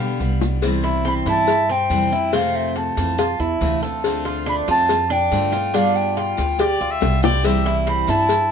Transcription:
0.00 0.16 B2 medium
0.00 0.19 D3 medium
0.00 0.19 G3 medium
0.00 0.19 B3 medium
0.00 0.19 G4 medium
0.00 0.48 F5 medium
0.20 1.20 C2 medium
0.20 0.62 D3 soft
0.20 0.62 G3 medium
0.20 0.62 B3 medium
0.20 0.62 G4 medium
0.20 maracas soft
0.41 low bongo medium
0.41 maracas medium
0.62 1.25 C3 medium
0.62 1.27 E3 medium
0.62 1.26 G3 medium
0.62 1.26 C4 medium
0.62 1.25 E4 medium
0.62 cowbell loud
0.62 maracas medium
0.84 1.05 E4 medium
0.84 cowbell medium
0.84 maracas soft
1.05 1.26 C4 medium
1.05 1.14 B5 loud
1.05 cowbell medium
1.05 maracas soft
1.26 1.86 G2 loud
1.26 1.46 E3 medium
1.26 1.46 G3 medium
1.26 1.46 C4 medium
1.26 1.47 E4 medium
1.26 1.68 E4 medium
1.26 1.73 A5 loud
1.26 cowbell medium
1.26 maracas medium
1.47 muted steel-string acoustic guitar stroke medium
1.47 cowbell loud
1.47 maracas medium
1.69 2.11 C4 medium
1.69 2.34 G5 loud
1.69 maracas soft
1.90 2.91 F2 medium
1.90 2.11 C3 medium
1.90 2.11 E3 medium
1.90 2.11 G3 medium
1.90 2.10 C4 medium
1.90 2.10 E4 medium
1.90 cowbell medium
1.90 maracas soft
2.11 2.33 G3 soft
2.11 2.32 C4 soft
2.11 2.32 E4 soft
2.11 2.33 E4 medium
2.11 maracas medium
2.32 2.96 C3 medium
2.32 2.98 A3 medium
2.32 2.75 C4 medium
2.32 2.97 C4 medium
2.32 2.96 F4 medium
2.32 2.57 F5 medium
2.32 cowbell loud
2.32 maracas loud
2.55 2.78 E5 medium
2.55 maracas soft
2.76 3.83 A5 medium
2.76 cowbell medium
2.76 maracas soft
2.97 3.37 F2 medium
2.97 3.17 E3 medium
2.97 3.17 A3 medium
2.97 3.18 C4 medium
2.97 3.17 F4 medium
2.97 cowbell medium
2.97 maracas medium
3.18 3.39 F4 medium
3.18 muted steel-string acoustic guitar stroke medium
3.18 cowbell loud
3.18 maracas medium
3.40 3.60 E2 medium
3.40 3.81 E4 medium
3.40 maracas soft
3.61 4.62 D2 loud
3.61 3.81 C3 medium
3.61 3.82 E3 medium
3.61 3.82 A3 medium
3.61 3.82 C4 medium
3.61 3.81 F4 medium
3.61 cowbell medium
3.61 maracas soft
3.82 4.04 A3 soft
3.82 4.03 C4 soft
3.82 4.03 F4 medium
3.82 4.24 A4 medium
3.82 maracas medium
4.04 4.67 D3 medium
4.04 4.68 A3 medium
4.04 4.68 C4 medium
4.04 4.67 F4 medium
4.04 cowbell loud
4.04 maracas medium
4.25 4.46 F4 medium
4.25 cowbell medium
4.25 maracas soft
4.46 4.67 D4 medium
4.46 4.55 B5 loud
4.46 cowbell medium
4.46 maracas soft
4.68 5.28 F2 loud
4.68 4.89 A3 medium
4.68 4.89 C4 medium
4.68 4.88 F4 medium
4.68 5.09 F4 medium
4.68 5.14 A5 loud
4.68 cowbell medium
4.68 maracas medium
4.89 muted steel-string acoustic guitar stroke medium
4.89 cowbell loud
4.89 maracas loud
5.10 5.52 D4 medium
5.10 5.77 G5 medium
5.10 maracas soft
5.32 6.32 G2 medium
5.32 5.52 D3 medium
5.32 5.52 A3 medium
5.32 5.53 C4 medium
5.32 5.52 F4 medium
5.32 cowbell medium
5.32 maracas soft
5.52 5.73 A3 soft
5.52 5.74 C4 medium
5.52 5.73 F4 medium
5.52 maracas medium
5.74 6.40 G3 medium
5.74 6.38 B3 medium
5.74 6.15 D4 medium
5.74 6.36 F4 medium
5.74 5.98 F5 medium
5.74 cowbell loud
5.74 maracas medium
5.95 6.17 G5 medium
5.95 maracas soft
6.17 6.58 F4 medium
6.17 7.20 G5 medium
6.17 cowbell medium
6.17 maracas soft
6.37 6.78 D2 medium
6.37 6.58 B3 medium
6.37 6.58 F4 medium
6.37 cowbell medium
6.37 maracas medium
6.58 6.80 G4 medium
6.58 6.93 D5 medium
6.58 muted steel-string acoustic guitar stroke medium
6.58 cowbell loud
6.58 maracas loud
6.80 7.00 D2 medium
6.80 7.22 F4 medium
6.80 maracas soft
6.91 7.23 E5 loud
7.01 8.03 C2 loud
7.01 7.22 G3 medium
7.01 7.22 B3 medium
7.01 7.21 F4 medium
7.01 cowbell medium
7.01 high bongo medium
7.01 maracas soft
7.23 7.44 B3 soft
7.23 7.43 F4 medium
7.23 7.65 G4 medium
7.23 7.47 D5 loud
7.23 low bongo loud
7.23 maracas medium
7.44 8.07 C3 medium
7.44 8.08 E3 medium
7.44 8.07 G3 medium
7.44 8.07 C4 medium
7.44 8.07 E4 medium
7.44 7.77 E5 medium
7.44 cowbell loud
7.44 maracas medium
7.66 7.87 E4 medium
7.66 cowbell medium
7.66 maracas soft
7.87 8.08 C4 medium
7.87 8.11 B5 loud
7.87 cowbell medium
7.87 maracas soft
8.07 8.52 G2 medium
8.07 8.28 E3 medium
8.07 8.28 G3 medium
8.07 8.29 C4 medium
8.07 8.28 E4 medium
8.07 8.50 E4 medium
8.07 8.52 A5 loud
8.07 cowbell medium
8.07 maracas medium
8.29 muted steel-string acoustic guitar stroke medium
8.29 cowbell loud
8.29 maracas loud

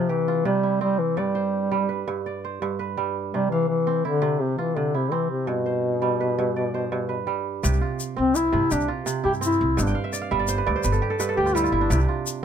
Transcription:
0.00 0.44 C3 medium
0.00 0.12 F3 medium
0.00 0.81 C4 medium
0.00 0.27 F4 medium
0.09 0.45 E3 medium
0.09 1.50 G4 medium
0.28 1.79 F4 medium
0.45 1.23 C3 medium
0.45 0.79 G3 medium
0.63 2.20 E4 soft
0.81 1.01 G3 medium
0.81 1.95 C4 medium
0.99 1.21 E3 medium
1.17 2.06 G2 medium
1.17 1.90 G3 medium
1.17 2.26 D5 medium
1.35 1.95 C5 medium
1.72 2.96 G3 medium
1.89 2.51 B4 medium
2.08 2.61 G2 medium
2.26 3.37 D5 medium
2.45 3.63 C5 medium
2.62 3.38 G2 medium
2.79 3.40 B4 medium
2.97 3.38 G3 medium
3.34 4.21 C3 medium
3.34 3.50 G3 medium
3.51 3.68 E3 loud
3.51 4.11 F5 medium
3.69 4.02 E3 medium
3.87 5.11 C4 medium
4.05 4.42 D3 loud
4.05 4.64 E4 medium
4.22 4.75 C3 medium
4.41 4.57 C3 medium
4.58 4.78 E3 medium
4.58 6.10 F4 medium
4.76 5.54 C3 medium
4.76 4.97 D3 medium
4.94 5.13 C3 medium
4.94 6.51 E4 soft
5.12 5.29 E3 medium
5.12 6.26 C4 medium
5.30 5.50 C3 medium
5.47 6.37 G2 medium
5.47 7.27 B2 medium
5.66 6.26 C5 medium
6.02 7.26 G3 medium
6.20 6.80 B4 medium
6.39 6.91 G2 medium
6.56 7.67 D5 medium
6.74 7.93 C5 medium
6.92 7.68 G2 medium
7.09 7.69 B4 soft
7.27 7.68 G3 medium
7.63 7.78 C2 loud
7.63 8.51 C3 medium
7.63 8.70 G4 medium
7.63 shaker medium
7.81 8.41 F4 medium
8.00 shaker medium
8.16 8.46 C2 medium
8.16 9.41 C4 medium
8.16 8.36 C4 loud
8.35 8.73 E4 loud
8.35 8.94 E4 medium
8.35 shaker medium
8.53 8.60 G2 medium
8.53 9.05 C3 medium
8.71 8.85 C2 loud
8.71 8.89 D4 loud
8.71 10.12 G4 medium
8.71 shaker medium
8.80 shaker soft
8.88 10.10 F4 medium
9.06 9.82 C3 medium
9.06 shaker medium
9.24 9.53 G2 medium
9.24 10.01 E4 medium
9.24 9.33 G4 loud
9.34 shaker soft
9.41 10.64 C4 medium
9.41 shaker medium
9.46 9.83 E4 loud
9.52 shaker soft
9.61 9.75 C2 medium
9.77 9.92 G1 loud
9.77 10.65 G2 medium
9.77 shaker medium
9.82 9.97 D4 medium
9.87 10.80 G5 medium
9.95 10.21 F5 medium
10.04 10.27 E5 medium
10.13 10.39 D5 medium
10.13 shaker medium
10.21 11.21 F5 medium
10.31 10.60 G1 medium
10.31 11.54 G3 medium
10.31 11.34 E5 medium
10.39 10.66 D5 medium
10.48 10.75 C5 medium
10.48 shaker medium
10.58 10.82 B4 medium
10.66 10.74 D2 medium
10.66 11.18 G2 medium
10.66 11.77 D5 medium
10.76 11.26 C5 medium
10.83 10.98 G1 loud
10.83 11.19 B4 medium
10.83 shaker medium
10.92 11.10 A4 medium
10.92 shaker soft
11.02 11.37 G4 medium
11.10 11.28 A4 medium
11.20 11.95 G2 medium
11.20 11.96 B4 medium
11.20 shaker medium
11.29 12.45 A4 medium
11.37 11.66 D2 medium
11.37 11.57 G4 loud
11.37 11.54 G4 medium
11.46 11.63 F4 medium
11.46 shaker soft
11.55 11.95 G3 medium
11.55 11.90 E4 medium
11.55 11.90 G4 medium
11.55 shaker medium
11.64 12.08 F4 medium
11.64 shaker soft
11.72 11.86 G1 medium
11.72 12.14 E4 medium
11.81 12.45 D4 medium
11.90 12.04 C2 loud
11.90 12.45 C3 medium
11.90 12.00 E4 medium
11.90 12.45 G4 medium
11.90 shaker medium
12.08 12.45 F4 medium
12.27 shaker medium

